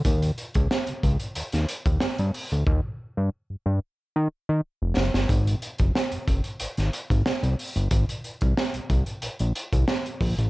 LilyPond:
<<
  \new Staff \with { instrumentName = "Analog synth bass" } { \clef bass \time 4/4 \key aes \major \tempo 4 = 92 ees,8 r16 des,16 r16 des,16 des,16 r16 ees,16 ees,16 r16 ees,16 g,16 g,16 r16 d,16 | ees,16 r8 g,16 r16 g,16 g,16 r8 ees16 r16 ees16 r16 f,,16 ges,,16 g,,16 | aes,,8 r16 ges,,16 r16 ges,,16 ges,,16 r16 aes,,16 aes,,16 r16 aes,,16 c,16 c,16 r16 g,,16 | aes,,16 r8 c,16 r16 c,16 c,16 r16 bes,,16 bes,,16 r16 c,16 r8 bes,,16 a,,16 | }
  \new DrumStaff \with { instrumentName = "Drums" } \drummode { \time 4/4 <hh bd>16 hh16 hh16 <hh bd>16 sn16 hh16 <hh bd>16 hh16 hh16 <hh sn>16 hh16 <hh bd>16 sn16 hh16 hho16 hh16 | bd4 r4 r4 r8 sn16 sn16 | <hh bd>16 hh16 hh16 <hh bd>16 sn16 hh16 <hh bd>16 hh16 hh16 <hh sn>16 hh16 <hh bd>16 sn16 hh16 hho16 hh16 | <hh bd>16 hh16 hh16 <hh bd>16 sn16 hh16 <hh bd>16 hh16 hh16 hh16 hh16 <hh bd>16 sn16 hh16 <hho bd>16 hh16 | }
>>